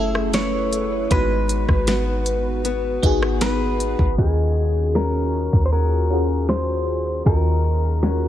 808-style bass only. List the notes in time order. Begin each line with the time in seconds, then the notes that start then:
Already playing: F#1
1.11 G#1
1.69 G#1
3.03 G#1
3.99 G#1
4.18 D#2
5.53 D#2
7.26 D#2